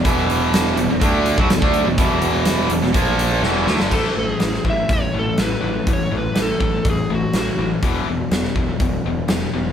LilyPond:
<<
  \new Staff \with { instrumentName = "Electric slide guitar" } { \time 4/4 \key a \lydian \tempo 4 = 123 r1 | r1 | a'8 gis'4 e''8 cis''8 a'8 b'4 | cis''8 b'8 a'4 gis'8 fis'8 fis'8. r16 |
r1 | }
  \new Staff \with { instrumentName = "Distorted electric guitar" } { \clef bass \time 4/4 \key a \lydian <e, b, e>4. <e, b,>16 <e, b,>16 <d a d'>8. <b, fis>16 <e, b,>16 <d a d'>8 <e, b,>16 | <e, b, e>4. <e, b,>16 <e, b,>16 <ais, eis ais>4 <e, b, e>8 <d a>16 <g, d>16 | <a, e a>8 <a, e>8 <a, e>8 <a, e>8 <a, e>8 <a, e>8 <a, e>8 <a, e>8 | <a, e>8 <a, e>8 <a, e>8 <a, e>8 <a, e>8 <a, e>8 <a, e>8 <a, e>8 |
<e, b, e>8 <e, b,>8 <e, b,>8 <e, b,>8 <e, b,>8 <e, b,>8 <e, b,>8 <e, b,>8 | }
  \new Staff \with { instrumentName = "Distorted electric guitar" } { \clef bass \time 4/4 \key a \lydian <e, b, e>4. <e, b,>16 <e, b,>16 <d a d'>8. <b, fis>16 <e, b,>16 <d a d'>8 <e, b,>16 | <e, b, e>4. <e, b,>16 <e, b,>16 <ais, eis ais>4 <e, b, e>8 <d a>16 <g, d>16 | r1 | r1 |
r1 | }
  \new Staff \with { instrumentName = "Picked electric bass" } { \clef bass \time 4/4 \key a \lydian e,,4. e,,16 e,,16 d,8. b,,16 e,,16 d,8 e,,16 | e,,4. e,,16 e,,16 ais,,4 e,,8 d,16 g,,16 | a,,8 a,,8 a,,8 a,,8 a,,8 a,,8 a,,8 a,,8 | a,,8 a,,8 a,,8 a,,8 a,,8 a,,8 a,,8 a,,8 |
e,,8 e,,8 e,,8 e,,8 e,,8 e,,8 e,,8 e,,8 | }
  \new DrumStaff \with { instrumentName = "Drums" } \drummode { \time 4/4 <hh bd>8 hh8 <hh sn>8 hh8 <hh bd>8 hh16 bd16 <hh sn>16 bd16 hh8 | <hh bd>8 hh8 <hh sn>8 hh16 sn16 <hh bd>8 hh8 sn8 sn16 sn16 | <cymc bd>4 <hh sn>16 sn16 bd8 <hh bd>4 <hh sn>4 | <hh bd>4 <hh sn>8 bd8 <hh bd>4 <hh sn>4 |
<hh bd>4 <hh sn>16 sn16 bd8 <hh bd>4 <hh sn>4 | }
>>